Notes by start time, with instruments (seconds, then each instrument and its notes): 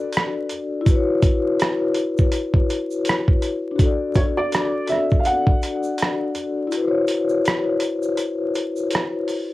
Already playing: vibraphone D4 F#4 A4 D5, felt piano B4
0.12 closed hi-hat, shaker
0.17 cross-stick
0.49 closed hi-hat, shaker
0.81 vibraphone E4
0.86 vibraphone F#4, kick, closed hi-hat, shaker
0.91 vibraphone B4
0.95 vibraphone C#5
1.22 kick, closed hi-hat, shaker
1.60 cross-stick, closed hi-hat, shaker
1.94 closed hi-hat, shaker
2.18 kick, shaker
2.32 closed hi-hat, shaker
2.54 kick
2.70 closed hi-hat, shaker
2.91 shaker
3.05 closed hi-hat, shaker
3.09 cross-stick
3.28 kick
3.42 closed hi-hat, shaker
3.71 vibraphone D4
3.76 vibraphone F#4, kick, closed hi-hat, shaker
3.80 vibraphone A4
3.85 vibraphone D5
4.15 felt piano C#5, kick, closed hi-hat, shaker
4.37 felt piano D5
4.52 cross-stick, closed hi-hat, shaker
4.87 felt piano E5, closed hi-hat, shaker
4.92 cross-stick
5.10 kick, shaker
5.19 felt piano F5
5.25 felt piano F#5, closed hi-hat, shaker
5.47 kick
5.62 closed hi-hat, shaker
5.83 shaker
5.98 closed hi-hat, shaker
6.02 cross-stick
6.35 closed hi-hat, shaker
6.67 vibraphone E4
6.72 vibraphone F#4, closed hi-hat, shaker
6.77 vibraphone B4
6.81 vibraphone C5
6.88 vibraphone C#5
7.07 closed hi-hat, shaker
7.29 shaker
7.45 cross-stick, closed hi-hat, shaker
7.80 closed hi-hat, shaker
8.03 shaker
8.18 closed hi-hat, shaker
8.55 closed hi-hat, shaker
8.76 shaker
8.91 closed hi-hat, shaker
8.95 cross-stick
9.28 open hi-hat, shaker